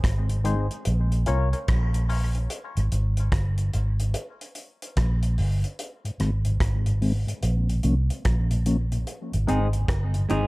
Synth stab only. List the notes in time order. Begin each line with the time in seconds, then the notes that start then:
0.44 C4 D#4 G#4 C5
1.26 C#4 F4 A#4 C#5
1.53 A#4 C#5
2.09 C#4 F4 A#4 C#5
9.47 C4 D#4 G#4 C5
10.29 C4 D#4 G#4 C5